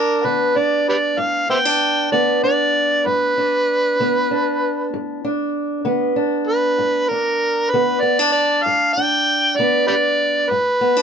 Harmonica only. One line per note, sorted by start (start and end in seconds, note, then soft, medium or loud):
0.00 0.27 A#4 medium
0.26 0.59 B4 medium
0.57 0.88 D5 medium
0.89 0.96 G4 medium
0.89 0.96 B4 medium
0.89 1.21 D5 medium
1.20 1.50 F5 medium
1.50 1.58 C5 medium
1.50 1.58 E5 medium
1.50 2.08 G5 loud
2.12 2.41 D5 medium
2.44 3.08 D5 loud
3.07 4.92 B4 medium
6.47 7.10 B4 medium
7.09 7.72 A#4 medium
7.70 8.02 B4 medium
8.01 8.31 D5 medium
8.32 8.65 D5 medium
8.63 8.93 F5 loud
8.93 9.58 G5 loud
9.56 9.87 D5 medium
9.87 9.96 G4 medium
9.87 9.94 B4 medium
9.87 10.51 D5 loud
10.50 11.02 B4 medium